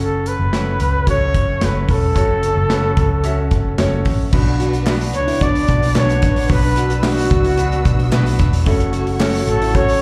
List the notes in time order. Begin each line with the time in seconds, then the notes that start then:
Already playing: F#1 C#3 F#3 A3 C#4 F#4 A4 C#5
0.01 A4
0.26 B4, closed hi-hat
0.40 F#1
0.52 C#4 F#4 A4 C#5, snare, clap, closed hi-hat
0.80 C#2, closed hi-hat
1.07 C#4 F#4 A4 C#5, kick, closed hi-hat
1.34 F#1, kick, closed hi-hat
1.60 F#1 C#4 F#4 A4 C#5, snare, clap, closed hi-hat
1.64 B4
1.88 E1 C#3 A4, kick, snare, open hi-hat
2.15 F#1 C#4 F#4 A4 C#5, kick, closed hi-hat
2.43 closed hi-hat
2.56 F#1
2.69 C#4 F#4 A4 B4, snare, clap, closed hi-hat
2.97 C#2, kick, closed hi-hat
3.24 C#4 F#4 A4 E5, closed hi-hat
3.51 F#1, kick, closed hi-hat
3.78 F#1 C#4 F#4 A4 C#5, snare, clap, closed hi-hat
4.05 A1, kick, snare, open hi-hat
4.32 B1 B2 B3 D4 F#4 B4 F#5, kick, crash
4.46 open hi-hat
4.60 F#4, hi-hat pedal, open hi-hat
4.73 hi-hat pedal, open hi-hat
4.86 B3 D4 F#4 B4, snare, clap, hi-hat pedal, open hi-hat
5.00 hi-hat pedal, open hi-hat
5.13 C#2 C#5, hi-hat pedal, open hi-hat
5.27 E4, hi-hat pedal, open hi-hat
5.41 B3 D4 F#4 D5, kick, hi-hat pedal, open hi-hat
5.55 hi-hat pedal, open hi-hat
5.68 B1 D4, kick, hi-hat pedal, open hi-hat
5.82 hi-hat pedal, open hi-hat
5.95 B1 B3 D4 F#4 B4 C#5, snare, clap, hi-hat pedal, open hi-hat
6.09 hi-hat pedal, open hi-hat
6.22 A1, kick, snare, hi-hat pedal, open hi-hat
6.36 hi-hat pedal, open hi-hat
6.49 B1 B3 D4 F#4 B4 E6, kick, hi-hat pedal, open hi-hat
6.63 hi-hat pedal, open hi-hat
6.76 F#4, hi-hat pedal, open hi-hat
6.90 hi-hat pedal, open hi-hat
7.03 B3 D4 F#4 B4, snare, clap, hi-hat pedal, open hi-hat
7.17 hi-hat pedal, open hi-hat
7.30 C#2, kick, hi-hat pedal, open hi-hat
7.44 E4, hi-hat pedal, open hi-hat
7.58 B3 D4 F#4 B4, hi-hat pedal, open hi-hat
7.72 hi-hat pedal
7.85 B1, kick, hi-hat pedal, open hi-hat
7.99 B3, open hi-hat
8.12 B1 B3 D4 F#4 B4, snare, clap, hi-hat pedal, open hi-hat
8.26 hi-hat pedal, open hi-hat
8.39 E1 D4, kick, snare, hi-hat pedal, open hi-hat
8.53 hi-hat pedal, open hi-hat
8.66 F#1 C#3 F#3 A3 C#4 F#4 A4 C#5 C#6, kick, hi-hat pedal, open hi-hat
8.80 hi-hat pedal
8.93 F#4, hi-hat pedal, open hi-hat
9.07 open hi-hat
9.20 A3 C#4 F#4 A4, snare, clap, hi-hat pedal, open hi-hat
9.34 hi-hat pedal, open hi-hat
9.47 A1 A4, hi-hat pedal, open hi-hat
9.61 E4, hi-hat pedal, open hi-hat
9.75 A3 C#4 F#4 A4 C#5, kick, hi-hat pedal, open hi-hat
9.88 hi-hat pedal, open hi-hat